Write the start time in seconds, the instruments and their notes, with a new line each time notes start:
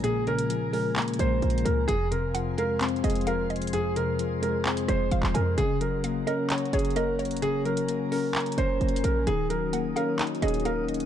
Already playing: 808-style bass A#1, synth keys A#2 C#3 F3 G#3 A#3, ambient pad A#4 G#5 A#5
0.04 synth keys A#2, grand piano G#4, closed hi-hat
0.27 synth keys C#3, grand piano A#4, closed hi-hat
0.39 closed hi-hat
0.50 synth keys F3, closed hi-hat
0.73 synth keys G#3, grand piano A#4, open hi-hat
0.96 synth keys A#3, clap, closed hi-hat
1.02 closed hi-hat
1.08 closed hi-hat
1.14 closed hi-hat
1.19 808-style bass A#1, synth keys G#3, grand piano C5, closed hi-hat
1.42 808-style bass A#1, synth keys F3, closed hi-hat
1.50 closed hi-hat
1.58 closed hi-hat
1.65 808-style bass C#2, grand piano A#4, closed hi-hat
1.88 808-style bass F1, synth keys F2, grand piano G#4, ambient pad G#4 F5 C6, closed hi-hat
2.11 synth keys C3, grand piano A#4, closed hi-hat
2.34 synth keys F3, synth pluck F#5, closed hi-hat
2.58 synth keys G#3, grand piano A#4, synth pluck F5, closed hi-hat
2.81 synth keys C4, clap, closed hi-hat
2.89 closed hi-hat
2.96 closed hi-hat
3.04 808-style bass F1, synth keys G#3, grand piano G#4, synth pluck D#5, closed hi-hat
3.10 closed hi-hat
3.15 closed hi-hat
3.21 closed hi-hat
3.27 synth keys F3, grand piano A#4, synth pluck F5, closed hi-hat
3.50 synth pluck D#5, closed hi-hat
3.56 closed hi-hat
3.62 closed hi-hat
3.67 closed hi-hat
3.73 synth keys F2, grand piano G#4, ambient pad D#5, closed hi-hat
3.96 synth keys C3, grand piano A#4, closed hi-hat
4.19 synth keys F3, closed hi-hat
4.42 synth keys G#3, grand piano A#4, closed hi-hat
4.65 synth keys C4, clap, closed hi-hat
4.77 closed hi-hat
4.88 808-style bass F1, synth keys G#3, grand piano C5, cross-stick, closed hi-hat
5.11 808-style bass F1, synth keys F3, synth pluck F5, closed hi-hat
5.23 808-style bass D#1, clap
5.34 808-style bass F2, grand piano A#4, synth pluck G#5, closed hi-hat
5.58 808-style bass F#1, synth keys C#3, grand piano G#4, ambient pad A#4 F#5 A#5, closed hi-hat
5.81 synth keys F#3, grand piano A#4, closed hi-hat
6.04 synth keys A#3, synth pluck F5, closed hi-hat
6.27 synth keys C#4, grand piano A#4, synth pluck D#5, closed hi-hat
6.50 synth keys C#5, clap, closed hi-hat
6.58 closed hi-hat
6.65 closed hi-hat
6.73 808-style bass F#1, synth keys C#4, grand piano G#4, synth pluck C#5, closed hi-hat
6.79 closed hi-hat
6.85 closed hi-hat
6.90 closed hi-hat
6.96 synth keys A#3, grand piano A#4, synth pluck D#5, closed hi-hat
7.19 synth pluck C#5, closed hi-hat
7.25 closed hi-hat
7.31 closed hi-hat
7.37 closed hi-hat
7.42 synth keys C#3, grand piano G#4, ambient pad G#5, closed hi-hat
7.65 synth keys F#3, grand piano A#4, closed hi-hat
7.77 closed hi-hat
7.88 synth keys A#3, closed hi-hat
8.12 synth keys C#4, grand piano A#4, open hi-hat
8.35 synth keys A#4, clap, closed hi-hat
8.40 closed hi-hat
8.46 closed hi-hat
8.52 closed hi-hat
8.58 808-style bass F#1, synth keys C#4, grand piano C5, closed hi-hat
8.81 808-style bass F#1, synth keys A#3, closed hi-hat
8.89 closed hi-hat
8.96 closed hi-hat
9.04 808-style bass A#1, grand piano A#4, closed hi-hat
9.27 808-style bass D#1, synth keys D#3, ambient pad C#4 F#4 D#6, grand piano G#4, closed hi-hat
9.50 synth keys F#3, grand piano A#4, closed hi-hat
9.73 synth keys A#3, synth pluck F#5, closed hi-hat
9.96 synth keys C#4, grand piano A#4, synth pluck F5, closed hi-hat
10.19 synth keys D#4, clap, closed hi-hat
10.27 closed hi-hat
10.35 closed hi-hat
10.42 808-style bass D#1, synth keys C#4, grand piano G#4, synth pluck D#5, closed hi-hat
10.48 closed hi-hat
10.54 closed hi-hat
10.60 closed hi-hat
10.65 synth keys A#3, grand piano A#4, synth pluck F5, closed hi-hat
10.88 synth pluck D#5, closed hi-hat
10.94 closed hi-hat
11.00 closed hi-hat